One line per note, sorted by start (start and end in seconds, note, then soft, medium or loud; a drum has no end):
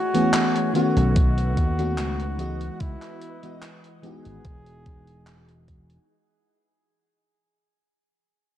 0.00 0.71 E3 medium
0.00 2.37 A3 medium
0.00 0.71 F#4 loud
0.00 0.74 C#5 medium
0.00 0.74 G#5 medium
0.14 0.70 E3 medium
0.14 0.70 A3 medium
0.14 0.70 B3 medium
0.14 0.70 C#4 medium
0.14 0.71 G#4 medium
0.14 closed hi-hat soft
0.34 clap loud
0.34 closed hi-hat medium
0.56 closed hi-hat soft
0.73 1.73 D#3 medium
0.73 1.73 A3 medium
0.73 1.73 B3 medium
0.73 1.74 C#4 medium
0.73 2.38 D#4 medium
0.73 2.82 F#4 loud
0.73 1.74 F#4 medium
0.73 2.38 B4 medium
0.73 6.05 F#5 medium
0.73 closed hi-hat soft
0.96 1.57 B1 medium
0.96 closed hi-hat soft
1.16 kick loud
1.16 closed hi-hat medium
1.38 closed hi-hat soft
1.57 1.98 D#2 medium
1.57 kick medium
1.57 closed hi-hat medium
1.78 2.34 D#3 loud
1.78 2.34 A3 medium
1.78 2.35 B3 medium
1.78 2.35 C#4 medium
1.78 2.35 F#4 loud
1.78 closed hi-hat soft
1.98 2.68 C#2 medium
1.98 clap loud
1.98 closed hi-hat medium
2.20 closed hi-hat soft
2.38 3.37 E3 medium
2.38 6.06 E3 medium
2.38 3.38 G#3 medium
2.38 3.38 B3 medium
2.38 3.39 F#4 loud
2.38 4.43 B4 medium
2.38 4.43 D#5 medium
2.38 3.38 D#5 medium
2.38 closed hi-hat medium
2.61 closed hi-hat soft
2.80 2.94 C#2 loud
2.80 3.77 E4 loud
2.80 kick loud
2.80 closed hi-hat medium
3.02 clap soft
3.02 closed hi-hat soft
3.21 closed hi-hat medium
3.43 3.99 E3 medium
3.43 3.99 G#3 medium
3.43 3.99 B3 medium
3.43 4.00 F#4 medium
3.43 3.99 D#5 medium
3.43 closed hi-hat soft
3.62 clap loud
3.62 closed hi-hat loud
3.84 closed hi-hat soft
4.02 6.06 E3 medium
4.02 6.06 G#3 medium
4.02 6.07 B3 medium
4.02 6.07 D#4 medium
4.02 6.08 F#4 loud
4.02 5.64 G#4 loud
4.02 closed hi-hat soft
4.25 4.37 G#1 medium
4.25 closed hi-hat soft
4.45 5.97 E1 medium
4.45 6.08 G#4 medium
4.45 6.08 D#5 medium
4.45 kick loud
4.45 closed hi-hat loud
4.66 closed hi-hat soft
4.86 kick loud
4.86 closed hi-hat medium
5.07 closed hi-hat soft
5.27 clap loud
5.27 closed hi-hat loud
5.49 closed hi-hat soft
5.68 kick medium
5.68 closed hi-hat medium
5.90 closed hi-hat soft